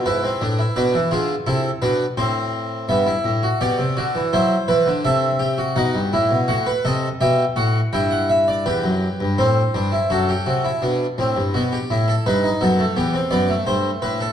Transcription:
<<
  \new Staff \with { instrumentName = "Harpsichord" } { \time 4/4 \key e \phrygian \tempo 4 = 84 << { b'4 b'8 gis'8 a'8 b'8 c''4 | e''4 d''4 c''4 e''4 | fis''4 fis''8 dis''8 e''8 fis''8 g''16 fis''16 e''16 d''16 | b'4 c''4 a'2 |
fis'16 g'8 a'16 b'8 a'8 g'8 d''8 c''8 b'16 a'16 | } \\ { e'16 c'16 d'16 e'16 d'8 f'8 e'8 d'8 c'4 | b16 e'8 fis'16 g'8 fis'8 e'8 b'8 a'8 g'16 fis'16 | dis'8 e'8 fis'16 b'16 a'8 g'8 fis'8 e'4 | g'4 c'8 d'16 e'16 fis'16 g'16 fis'16 e'16 d'8 c'8 |
b8 e'8 dis'16 dis'16 b16 a16 b16 c'16 b16 a4~ a16 | } >> }
  \new Staff \with { instrumentName = "Harpsichord" } { \clef bass \time 4/4 \key e \phrygian gis,8 a,8 b,16 e16 d8 c8 b,8 a,4 | g,8 a,8 b,16 c16 d16 e16 fis8 e16 d16 c4 | b,16 g,16 a,16 b,16 a,8 c8 b,8 a,8 g,4 | e,16 fis,8 g,16 a,8 g,8 fis,8 c8 b,8 a,16 g,16 |
b,8 a,8 g,8 fis,8 e,8 fis,8 g,8 a,8 | }
>>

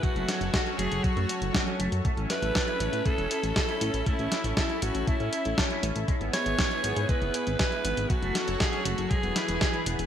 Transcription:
<<
  \new Staff \with { instrumentName = "Alto saxophone" } { \time 4/4 \key a \major \tempo 4 = 119 fis'4 fis'8 gis'8 fis'4 cis'8. r16 | r8 b'4. a'4 a'4 | e'4 e'8 fis'8 e'4 cis'8. r16 | r8 cis''4. b'4 b'4 |
fis'4 gis'8 fis'8 gis'4 gis'8. r16 | }
  \new Staff \with { instrumentName = "Analog synth pad" } { \time 4/4 \key a \major << { <fis fis' cis''>1 | cis'1~ | cis'1 | <b gis'>1 |
<fis fis' cis''>2 <e e' b'>2 | } \\ { a'1 | e'1~ | e'1~ | e'1 |
a'2 gis'2 | } >> }
  \new Staff \with { instrumentName = "Clean electric guitar" } { \time 4/4 \key a \major fis16 a16 cis'16 r16 fis'16 cis'16 a16 r16 fis16 a16 cis'16 r16 fis'16 cis'16 a16 r16 | a16 cis'16 e'16 r16 a'16 e'16 cis'16 r16 a16 cis'16 e'16 r16 a'16 e'16 cis'16 r16 | a16 cis'16 e'16 r16 a'16 e'16 cis'16 r16 a16 cis'16 e'16 r16 a'16 e'16 cis'16 r16 | gis16 b16 e'16 r16 gis'16 e'16 b16 r16 gis16 b16 e'16 r16 gis'16 e'16 b16 r16 |
fis16 a16 cis'16 r16 fis'16 cis'16 a16 r16 gis16 b16 e'16 r16 gis'16 e'16 b16 r16 | }
  \new Staff \with { instrumentName = "Analog synth bass" } { \clef bass \time 4/4 \key a \major r16 fis,,16 r16 fis,,16 r8 fis,,16 fis,,16 r16 fis,16 r16 fis,,16 r8 fis,,16 fis,16 | r16 a,,16 r16 a,,16 r8 a,,16 a,16 r16 e,,16 r16 a,,16 r8 a,,16 a,,16 | r16 a,,16 r16 a,,16 r8 a,,16 a,,16 r16 a,16 r16 a,,16 r8 a,,16 a,,16 | r16 gis,,16 r16 gis,,16 r8 gis,,16 gis,16 r16 fis,,16 r16 gis,,16 r8 gis,,16 gis,,16 |
r16 fis,,16 r16 fis,,16 r8 fis,,16 fis,,16 r16 e,,16 r16 e,,16 r8 e,,16 e,,16 | }
  \new DrumStaff \with { instrumentName = "Drums" } \drummode { \time 4/4 <hh bd>16 hh16 <hh sn>16 hh16 <hh bd sn>16 hh16 hh16 hh16 <hh bd>16 hh16 hh16 hh16 <hh bd sn>16 hh16 hh16 hh16 | <hh bd>16 hh16 <hh sn>16 hh16 <hh bd sn>16 hh16 hh16 hh16 <hh bd>16 hh16 hh16 hh16 <hh bd sn>16 hh16 hh16 hh16 | <hh bd>16 hh16 <hh sn>16 hh16 <hh bd sn>16 hh16 hh16 hh16 <hh bd>16 hh16 hh16 hh16 <hh bd sn>16 hh16 hh16 hh16 | <hh bd>16 hh16 <hh sn>16 hh16 <hh bd sn>16 hh16 hh16 hh16 <hh bd>16 hh16 hh16 hh16 <hh bd sn>16 hh16 hh16 hh16 |
<hh bd>16 hh16 <hh sn>16 hh16 <hh bd sn>16 hh16 hh16 hh16 <hh bd>16 hh16 <hh sn>16 hh16 <hh bd sn>16 hh16 hh16 hh16 | }
>>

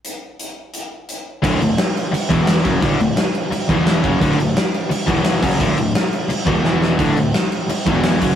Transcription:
<<
  \new Staff \with { instrumentName = "Distorted electric guitar" } { \clef bass \time 4/4 \key d \major \tempo 4 = 172 r1 | <d, a, d>8 <d, a,>8 r4. <e, b, e>4 <fis, cis fis>8 | <d, a, d>8 <d, a,>8 r4. <e, b, e>4 <fis, cis fis>8 | <d, a, d>8 <d, a,>8 r4. <e, b, e>4 <fis, cis fis>8 |
<d, a, d>8 <d, a,>8 r4. <e, b, e>8 <e, b, e>4 | <d, a, d>8 <d, a,>8 r4. <e, b, e>4 <fis, cis fis>8 | }
  \new Staff \with { instrumentName = "Distorted electric guitar" } { \clef bass \time 4/4 \key d \major r1 | <d, a, d>8 <d, a,>8 r4. <e, b, e>4 <fis, cis fis>8 | <d, a, d>8 <d, a,>8 r4. <e, b, e>4 <fis, cis fis>8 | <d, a, d>8 <d, a,>8 r4. <e, b, e>4 <fis, cis fis>8 |
<d, a, d>8 <d, a,>8 r4. <e, b, e>8 <e, b, e>4 | <d, a, d>8 <d, a,>8 r4. <e, b, e>4 <fis, cis fis>8 | }
  \new Staff \with { instrumentName = "Overdriven electric guitar" } { \clef bass \time 4/4 \key d \major r1 | <d, a, d>8 <d, a,>8 r4. <e, b, e>4 <fis, cis fis>8 | <d, a, d>8 <d, a,>8 r4. <e, b, e>4 <fis, cis fis>8 | <d, a, d>8 <d, a,>8 r4. <e, b, e>4 <fis, cis fis>8 |
<d, a, d>8 <d, a,>8 r4. <e, b, e>8 <e, b, e>4 | <d, a, d>8 <d, a,>8 r4. <e, b, e>4 <fis, cis fis>8 | }
  \new Staff \with { instrumentName = "Picked electric bass" } { \clef bass \time 4/4 \key d \major r1 | d,,8 d,,8 r4. e,,4 fis,,8 | d,,8 d,,8 r4. e,,4 fis,,8 | d,,8 d,,8 r4. e,,4 fis,,8 |
d,,8 d,,8 r4. e,,8 e,,4 | d,,8 d,,8 r4. e,,4 fis,,8 | }
  \new DrumStaff \with { instrumentName = "Drums" } \drummode { \time 4/4 hh4 hh4 hh4 hh4 | <cymc bd>8 cymc8 <cymc sn>8 cymc8 cymc8 <cymc bd>8 <cymc sn>8 <cymc bd>8 | <cymc bd>8 cymc8 <cymc sn>8 cymc8 cymc8 <cymc bd>8 <cymc sn>8 <cymc bd>8 | <cymc bd>8 cymc8 <cymc sn>8 cymc8 cymc8 <cymc bd>8 <cymc sn>8 <cymc bd>8 |
<cymc bd>8 cymc8 <cymc sn>8 cymc8 cymc8 <cymc bd>8 sn8 sn8 | <cymc bd>8 cymc8 <cymc sn>8 cymc8 cymc8 <cymc bd>8 <cymc sn>8 <cymc bd>8 | }
>>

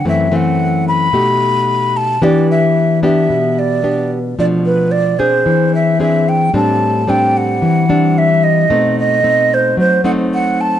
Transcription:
<<
  \new Staff \with { instrumentName = "Flute" } { \time 4/4 \key e \minor \tempo 4 = 111 e''8 fis''4 b''2 a''8 | d''8 e''4 e''4 d''4 r8 | d''8 b'8 d''8 c''4 e''8 e''8 g''8 | a''4 g''8 fis''4. e''8 dis''8~ |
dis''8 dis''4 c''8 c''8 fis''8 fis''8 a''8 | }
  \new Staff \with { instrumentName = "Nylon-string guitar" } { \time 4/4 \key e \minor << { <e a c'>8 <e a c'>4. <a dis' g'>2 | <b d' g'>4. <b d' g'>4. <b d' g'>8 r8 | <f a d'>4. <c' d' gis'>4. <bis d' gis'>4 | <g c' d'>4 <g c' d'>4. <g c' d'>4. |
<a c' dis'>4 <a c' dis'>4. <a c' dis'>4. | } \\ { fis,2 b,2 | e2 b,2 | b,2 e2 | a,2 e2 |
b,2 fis2 | } >> }
>>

